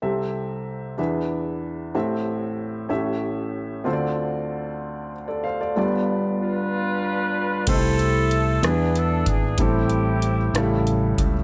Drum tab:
CC |------|------|------|------|
HH |------|------|------|------|
SD |------|------|------|------|
BD |------|------|------|------|

CC |x-----|------|
HH |xxxxxx|xxxxxx|
SD |---r--|---r--|
BD |o----o|o----o|